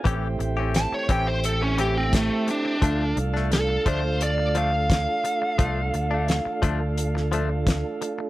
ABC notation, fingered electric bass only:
X:1
M:4/4
L:1/16
Q:1/4=87
K:Dm
V:1 name="Fingered electric bass" clef=bass
A,,,2 A,,,3 z A,,,8 z2 | D,,2 C,,4 D,,8 z2 | C,,2 D,,3 z D,,8 z2 |]